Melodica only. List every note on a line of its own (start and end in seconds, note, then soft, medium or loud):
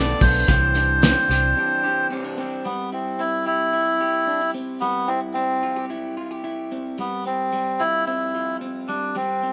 0.00 0.23 D5 loud
0.22 2.07 C5 medium
2.65 2.90 B3 medium
2.93 3.21 C4 medium
3.19 3.45 E4 loud
3.46 4.51 E4 loud
4.80 5.09 B3 loud
5.07 5.20 C4 loud
5.34 5.85 C4 loud
7.00 7.24 B3 medium
7.27 7.82 C4 medium
7.80 8.05 E4 loud
8.06 8.57 E4 loud
8.88 9.16 D4 medium
9.16 9.53 C4 loud